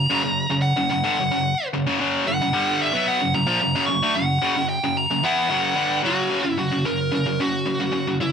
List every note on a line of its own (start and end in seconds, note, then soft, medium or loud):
0.00 0.65 A#5 loud
0.10 0.23 F#2 medium
0.10 0.23 C#3 loud
0.24 0.45 F#2 medium
0.24 0.46 C#3 medium
0.51 0.72 F#2 medium
0.51 0.72 C#3 medium
0.62 0.89 F#5 medium
0.77 0.90 F#2 medium
0.77 0.90 C#3 medium
0.90 1.03 F#2 medium
0.90 1.04 C#3 medium
0.90 1.68 F#5 loud
1.04 1.17 G2 medium
1.04 1.17 D3 loud
1.20 1.30 F#2 medium
1.20 1.31 C#3 medium
1.32 1.53 F#2 medium
1.32 1.54 C#3 medium
1.74 1.85 F#2 medium
1.74 1.85 C#3 medium
1.87 1.99 F#2 medium
1.87 1.99 C#3 loud
2.00 2.25 F#2 medium
2.00 2.26 C#3 loud
2.00 2.26 F#3 loud
2.26 2.40 F#2 medium
2.26 2.40 C#3 medium
2.26 2.83 F#5 medium
2.41 2.53 F#2 medium
2.41 2.54 C#3 medium
2.53 2.93 G2 loud
2.53 2.93 D3 loud
2.53 2.93 G3 loud
2.82 3.06 E5 medium
2.93 3.20 B2 medium
2.93 3.20 F#3 medium
2.93 3.20 B3 loud
3.08 3.33 F#5 loud
3.21 3.34 F#2 medium
3.21 3.33 C#3 medium
3.35 3.48 F#2 medium
3.35 3.46 C#3 medium
3.35 3.59 A#5 medium
3.47 3.60 A#2 loud
3.47 3.60 F3 loud
3.61 3.74 F#2 medium
3.61 3.75 C#3 medium
3.61 3.86 A#5 loud
3.75 3.87 F#2 loud
3.75 3.88 C#3 loud
3.86 4.02 F#2 medium
3.86 4.02 C#3 medium
3.86 4.15 C#6 loud
4.03 4.15 D3 medium
4.03 4.15 A3 loud
4.16 4.37 F#2 medium
4.16 4.38 C#3 medium
4.16 4.66 F#5 loud
4.42 4.55 F#2 medium
4.42 4.55 C#3 loud
4.57 4.78 F#2 medium
4.57 4.78 C#3 medium
4.69 4.97 G5 loud
4.84 5.05 F#2 medium
4.84 5.05 C#3 medium
4.97 5.25 A#5 loud
5.11 5.24 F#2 medium
5.11 5.23 C#3 medium
5.24 5.50 E3 medium
5.24 5.50 B3 medium
5.24 5.51 E4 loud
5.24 6.01 F#5 medium
5.50 5.76 F#2 loud
5.50 5.76 C#3 loud
5.50 5.76 F#3 loud
5.76 6.03 G2 medium
5.76 6.03 D3 medium
5.76 6.03 G3 loud
6.03 6.29 F#2 medium
6.03 6.29 C#3 loud
6.03 6.30 F#3 loud
6.03 6.57 F#4 medium
6.30 6.43 F#2 medium
6.30 6.43 C#3 medium
6.30 6.43 F#3 medium
6.44 6.57 F#2 medium
6.44 6.57 C#3 medium
6.58 6.71 F#2 medium
6.58 6.70 C#3 medium
6.58 6.86 F#4 medium
6.72 6.84 F#2 medium
6.72 6.84 C#3 medium
6.85 7.10 F#2 medium
6.85 7.10 C#3 medium
6.85 7.13 A#4 medium
7.12 7.26 F#2 medium
7.12 7.25 C#3 medium
7.12 7.42 A#4 medium
7.26 7.39 F#2 medium
7.26 7.39 C#3 medium
7.40 7.65 F#2 medium
7.40 7.64 C#3 medium
7.40 8.17 F#4 medium
7.66 7.79 F#2 medium
7.66 7.79 C#3 medium
7.80 7.91 F#2 medium
7.80 7.91 C#3 medium
7.92 8.06 F#2 medium
7.92 8.06 C#3 medium
8.07 8.19 F#2 medium
8.07 8.19 C#3 medium
8.20 8.32 F#2 medium
8.20 8.32 C#3 medium
8.20 8.32 E4 medium